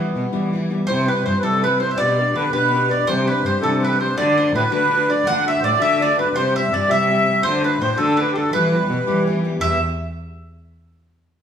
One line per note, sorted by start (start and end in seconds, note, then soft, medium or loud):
0.00 0.14 E3 soft
0.00 0.15 G3 soft
0.00 0.16 B3 soft
0.00 0.49 B3 medium
0.00 0.16 E4 medium
0.15 0.30 B2 medium
0.15 0.32 E3 medium
0.15 0.32 G3 medium
0.15 0.31 B3 medium
0.15 0.31 E4 medium
0.33 0.54 E2 medium
0.33 0.54 B2 medium
0.33 0.78 E3 medium
0.33 0.51 E3 medium
0.33 0.52 G3 medium
0.33 0.53 B3 medium
0.33 0.53 E4 medium
0.53 0.70 E3 medium
0.53 0.71 G3 medium
0.53 0.70 B3 medium
0.53 0.69 E4 medium
0.70 0.88 E3 soft
0.70 0.88 G3 medium
0.70 0.88 B3 soft
0.70 0.88 E4 medium
0.87 1.19 C3 loud
0.87 1.09 C3 medium
0.87 1.09 E3 medium
0.87 1.09 G3 medium
0.87 1.08 C4 medium
0.87 1.07 E4 medium
0.87 1.06 C5 loud
0.87 1.09 C5 medium
1.08 1.25 G3 soft
1.08 1.26 C4 soft
1.08 1.26 E4 medium
1.08 1.24 B4 medium
1.25 1.40 G2 medium
1.25 1.43 E3 medium
1.25 1.42 G3 medium
1.25 1.42 C4 medium
1.25 1.42 E4 medium
1.25 1.39 C5 medium
1.25 1.42 C5 medium
1.38 1.43 B4 medium
1.42 1.88 C3 medium
1.42 1.64 C3 soft
1.42 1.62 E3 medium
1.42 1.62 G3 medium
1.42 1.63 C4 medium
1.42 1.63 E4 medium
1.42 1.64 A4 loud
1.42 1.63 A4 medium
1.63 1.80 E3 medium
1.63 1.81 G3 medium
1.63 1.81 C4 medium
1.63 1.80 E4 medium
1.63 1.79 B4 medium
1.63 1.80 B4 medium
1.80 1.98 G3 soft
1.80 1.98 C4 medium
1.80 1.98 E4 medium
1.80 1.98 C5 medium
1.80 1.90 C5 medium
1.91 1.98 E5 medium
1.98 2.29 B2 medium
1.98 2.18 B3 medium
1.98 2.18 D4 medium
1.98 2.18 G4 medium
1.98 2.17 B4 medium
1.98 2.36 D5 loud
1.98 2.33 D5 loud
2.18 2.35 D4 soft
2.18 2.35 G4 medium
2.18 2.35 B4 medium
2.35 2.50 D3 loud
2.35 2.52 B3 medium
2.35 2.52 D4 medium
2.35 2.51 G4 medium
2.35 2.52 B4 medium
2.35 2.51 B4 medium
2.52 2.98 B2 loud
2.52 2.71 B3 medium
2.52 2.71 D4 medium
2.52 2.72 G4 medium
2.52 2.73 B4 medium
2.52 2.91 B4 medium
2.52 2.92 B4 loud
2.72 2.90 B3 medium
2.72 2.90 D4 medium
2.72 2.89 G4 medium
2.72 2.88 B4 medium
2.89 3.07 D4 soft
2.89 3.07 G4 soft
2.89 3.07 B4 medium
2.89 3.08 D5 loud
2.89 3.07 D5 medium
3.06 3.27 C3 medium
3.06 3.38 C3 loud
3.06 3.27 E3 medium
3.06 3.28 G3 medium
3.06 3.27 D4 medium
3.06 3.25 G4 medium
3.06 3.26 C5 loud
3.06 3.29 C5 medium
3.26 3.44 G3 medium
3.26 3.44 D4 medium
3.26 3.44 G4 soft
3.26 3.44 B4 medium
3.26 3.46 B4 medium
3.44 3.59 G2 medium
3.44 3.62 E3 medium
3.44 3.61 G3 medium
3.44 3.61 D4 medium
3.44 3.61 G4 medium
3.44 3.63 C5 medium
3.62 4.07 C3 medium
3.62 3.83 C3 medium
3.62 3.80 E3 medium
3.62 3.81 G3 medium
3.62 3.82 D4 medium
3.62 3.82 G4 medium
3.62 3.76 A4 loud
3.62 3.82 A4 medium
3.78 3.99 E3 medium
3.78 3.83 C5 medium
3.82 4.00 G3 medium
3.82 3.99 D4 medium
3.82 3.98 G4 medium
3.82 3.99 B4 medium
3.82 4.00 B4 medium
3.99 4.17 G3 soft
3.99 4.16 D4 soft
3.99 4.17 G4 soft
3.99 4.16 C5 loud
3.99 4.17 C5 medium
4.16 4.37 D3 medium
4.16 4.48 D3 loud
4.16 4.37 A3 medium
4.16 4.37 D4 medium
4.16 4.35 F#4 medium
4.16 4.37 D5 loud
4.16 4.53 D5 loud
4.36 4.53 A3 soft
4.36 4.54 D4 medium
4.36 4.54 F#4 medium
4.36 4.55 C5 medium
4.53 4.69 A2 loud
4.53 4.71 D3 medium
4.53 4.70 A3 medium
4.53 4.70 D4 medium
4.53 4.70 F#4 medium
4.53 4.72 B4 loud
4.53 4.71 B4 medium
4.71 5.16 D3 medium
4.71 4.90 D3 medium
4.71 4.91 A3 medium
4.71 4.92 D4 medium
4.71 4.91 F#4 medium
4.71 5.07 B4 medium
4.71 5.11 B4 loud
4.91 5.09 D3 medium
4.91 5.09 A3 medium
4.91 5.08 D4 medium
4.91 5.07 F#4 medium
5.08 5.25 A3 soft
5.08 5.25 D4 medium
5.08 5.26 F#4 medium
5.08 5.27 D5 medium
5.26 5.46 D3 medium
5.26 5.57 D3 medium
5.26 5.46 A3 medium
5.26 5.46 D4 medium
5.26 5.45 F#4 medium
5.26 5.45 F#5 loud
5.46 5.62 A3 soft
5.46 5.63 D4 soft
5.46 5.63 F#4 medium
5.46 5.60 E5 loud
5.46 5.65 E5 medium
5.59 5.77 A2 medium
5.59 5.80 D3 medium
5.59 5.64 C5 medium
5.64 5.80 A3 medium
5.64 5.79 D4 medium
5.64 5.78 F#4 medium
5.64 5.80 D5 medium
5.64 5.82 D5 medium
5.80 6.25 D3 medium
5.80 5.99 D3 medium
5.80 6.00 A3 medium
5.80 6.01 D4 medium
5.80 6.00 F#4 medium
5.80 6.01 E5 loud
5.80 6.02 E5 loud
6.00 6.18 D3 medium
6.00 6.18 A3 medium
6.00 6.17 D4 medium
6.00 6.16 F#4 medium
6.00 6.17 D5 loud
6.00 6.19 D5 medium
6.18 6.35 A3 soft
6.18 6.35 D4 medium
6.18 6.35 F#4 medium
6.18 6.36 B4 medium
6.18 6.35 B4 medium
6.35 6.55 C3 medium
6.35 6.65 C3 medium
6.35 6.55 E3 medium
6.35 6.55 G3 medium
6.35 6.55 C4 medium
6.35 6.54 G4 medium
6.35 6.54 C5 medium
6.35 6.54 C5 loud
6.55 6.72 G3 soft
6.55 6.72 C4 medium
6.55 6.72 G4 soft
6.55 6.73 E5 medium
6.72 6.86 G2 medium
6.72 6.89 E3 medium
6.72 6.89 G3 medium
6.72 6.88 C4 medium
6.72 6.88 G4 medium
6.72 6.90 D5 medium
6.72 6.89 D5 medium
6.89 7.34 C3 medium
6.89 7.10 C3 medium
6.89 7.08 E3 medium
6.89 7.09 G3 medium
6.89 7.10 C4 medium
6.89 7.10 G4 medium
6.89 7.45 E5 loud
6.89 7.41 E5 medium
7.09 7.27 E3 medium
7.09 7.27 G3 medium
7.09 7.26 C4 medium
7.09 7.25 G4 medium
7.26 7.43 G3 soft
7.26 7.44 C4 soft
7.26 7.44 G4 soft
7.43 7.64 D3 medium
7.43 7.74 D3 loud
7.43 7.64 A3 medium
7.43 7.63 D4 medium
7.43 7.62 F#4 medium
7.43 7.62 C5 loud
7.43 7.63 C5 medium
7.64 7.80 A3 soft
7.64 7.81 D4 medium
7.64 7.81 F#4 medium
7.64 7.80 B4 medium
7.64 7.82 B4 medium
7.80 7.95 A2 medium
7.80 7.98 D3 medium
7.80 7.98 A3 medium
7.80 7.97 D4 medium
7.80 7.97 F#4 medium
7.80 7.97 C5 medium
7.80 7.99 C5 medium
7.98 8.43 D3 medium
7.98 8.17 D3 medium
7.98 8.18 A3 medium
7.98 8.19 D4 medium
7.98 8.18 F#4 medium
7.98 8.17 A4 medium
7.98 8.20 A4 loud
8.17 8.35 D3 medium
8.17 8.36 A3 medium
8.17 8.36 D4 medium
8.17 8.34 F#4 medium
8.17 8.34 B4 medium
8.17 8.32 B4 medium
8.32 8.53 F#4 soft
8.32 8.36 G4 medium
8.32 8.51 A4 medium
8.36 8.53 A3 soft
8.36 8.53 D4 soft
8.36 8.54 A4 medium
8.53 8.73 E2 medium
8.53 8.73 B2 medium
8.53 8.83 E3 loud
8.53 8.73 E3 medium
8.53 8.73 G3 medium
8.53 8.73 B3 medium
8.53 8.72 G4 medium
8.53 9.23 B4 loud
8.53 9.24 B4 medium
8.73 8.89 E3 soft
8.73 8.89 G3 soft
8.73 8.91 B3 medium
8.73 8.90 G4 soft
8.90 9.04 B2 medium
8.90 9.07 E3 medium
8.90 9.06 G3 medium
8.90 9.06 B3 medium
8.90 9.06 G4 medium
9.07 9.28 E2 medium
9.07 9.28 B2 medium
9.07 9.51 E3 medium
9.07 9.26 E3 medium
9.07 9.26 G3 medium
9.07 9.27 B3 medium
9.07 9.27 G4 medium
9.27 9.44 E3 medium
9.27 9.44 G3 medium
9.27 9.43 B3 medium
9.27 9.43 G4 medium
9.44 9.60 E3 soft
9.44 9.61 G3 soft
9.44 9.61 B3 medium
9.44 9.61 G4 medium
9.60 9.77 E2 medium
9.60 9.79 E2 loud
9.60 9.77 B2 medium
9.60 9.77 E3 medium
9.60 9.78 G3 medium
9.60 9.78 B3 medium
9.60 9.78 G4 medium
9.60 9.80 E5 medium
9.60 9.80 E5 loud